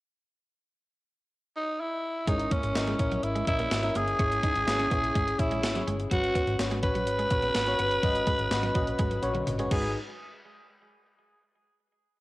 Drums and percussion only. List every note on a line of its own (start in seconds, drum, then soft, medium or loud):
2.28 kick loud
2.28 closed hi-hat medium
2.39 closed hi-hat medium
2.51 kick medium
2.51 closed hi-hat medium
2.63 closed hi-hat soft
2.75 snare loud
2.75 closed hi-hat medium
2.87 closed hi-hat medium
2.99 kick medium
2.99 closed hi-hat medium
3.12 closed hi-hat soft
3.23 closed hi-hat medium
3.36 closed hi-hat soft
3.47 kick medium
3.47 closed hi-hat medium
3.59 closed hi-hat soft
3.71 snare loud
3.71 closed hi-hat medium
3.83 closed hi-hat soft
3.95 closed hi-hat medium
4.08 closed hi-hat soft
4.19 kick loud
4.19 closed hi-hat medium
4.32 closed hi-hat medium
4.43 kick medium
4.43 closed hi-hat medium
4.56 closed hi-hat soft
4.68 snare loud
4.68 closed hi-hat medium
4.80 closed hi-hat medium
4.91 kick medium
4.91 closed hi-hat medium
5.04 closed hi-hat soft
5.16 kick medium
5.16 closed hi-hat medium
5.28 closed hi-hat soft
5.39 kick medium
5.39 closed hi-hat medium
5.51 closed hi-hat soft
5.63 snare loud
5.63 closed hi-hat medium
5.76 closed hi-hat soft
5.88 closed hi-hat medium
6.00 closed hi-hat soft
6.11 kick loud
6.11 closed hi-hat medium
6.24 closed hi-hat medium
6.35 kick medium
6.35 closed hi-hat medium
6.47 closed hi-hat soft
6.59 snare loud
6.59 closed hi-hat medium
6.71 closed hi-hat medium
6.83 kick medium
6.83 closed hi-hat medium
6.95 closed hi-hat soft
7.07 closed hi-hat medium
7.19 closed hi-hat soft
7.31 kick medium
7.31 closed hi-hat medium
7.42 closed hi-hat soft
7.55 snare loud
7.55 closed hi-hat loud
7.66 closed hi-hat soft
7.79 closed hi-hat medium
7.91 closed hi-hat soft
8.03 kick loud
8.03 closed hi-hat medium
8.15 closed hi-hat medium
8.27 kick medium
8.27 closed hi-hat medium
8.39 closed hi-hat soft
8.51 snare loud
8.51 closed hi-hat medium
8.63 closed hi-hat soft
8.75 kick medium
8.75 closed hi-hat medium
8.87 closed hi-hat soft
8.99 kick medium
8.99 closed hi-hat medium
8.99 high tom soft
9.11 closed hi-hat soft
9.11 high tom medium
9.23 closed hi-hat medium
9.35 closed hi-hat soft
9.35 mid tom medium
9.47 closed hi-hat medium
9.47 mid tom medium
9.59 closed hi-hat soft
9.71 kick loud
9.71 crash medium